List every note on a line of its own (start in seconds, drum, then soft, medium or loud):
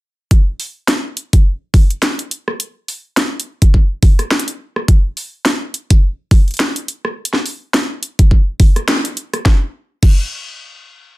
0.31 kick loud
0.31 closed hi-hat medium
0.60 open hi-hat medium
0.88 snare loud
0.88 closed hi-hat medium
1.17 closed hi-hat medium
1.33 kick loud
1.33 closed hi-hat medium
1.74 kick loud
1.74 open hi-hat medium
1.90 closed hi-hat soft
2.02 snare loud
2.02 closed hi-hat medium
2.19 closed hi-hat medium
2.31 closed hi-hat medium
2.48 cross-stick medium
2.60 closed hi-hat medium
2.88 open hi-hat medium
3.17 snare loud
3.17 closed hi-hat medium
3.40 closed hi-hat medium
3.62 kick loud
3.62 closed hi-hat medium
3.74 kick medium
4.03 kick loud
4.03 open hi-hat medium
4.19 cross-stick soft
4.19 closed hi-hat soft
4.31 snare loud
4.39 closed hi-hat medium
4.48 closed hi-hat medium
4.76 cross-stick medium
4.88 kick loud
4.88 closed hi-hat medium
5.17 open hi-hat medium
5.45 snare loud
5.45 closed hi-hat medium
5.74 closed hi-hat medium
5.90 kick loud
5.90 closed hi-hat medium
6.31 kick loud
6.31 open hi-hat medium
6.48 closed hi-hat soft
6.51 closed hi-hat soft
6.54 closed hi-hat soft
6.57 snare loud
6.57 closed hi-hat soft
6.60 closed hi-hat medium
6.76 closed hi-hat medium
6.88 closed hi-hat medium
7.05 cross-stick medium
7.25 closed hi-hat medium
7.33 snare soft
7.46 open hi-hat medium
7.74 snare loud
7.74 closed hi-hat medium
8.03 closed hi-hat medium
8.19 kick loud
8.19 closed hi-hat medium
8.31 kick medium
8.60 kick loud
8.60 open hi-hat medium
8.76 cross-stick soft
8.76 closed hi-hat soft
8.88 snare loud
8.88 closed hi-hat medium
9.05 closed hi-hat medium
9.17 closed hi-hat medium
9.34 cross-stick medium
9.34 closed hi-hat soft
9.46 kick loud
9.46 snare medium
10.03 kick loud
10.03 crash medium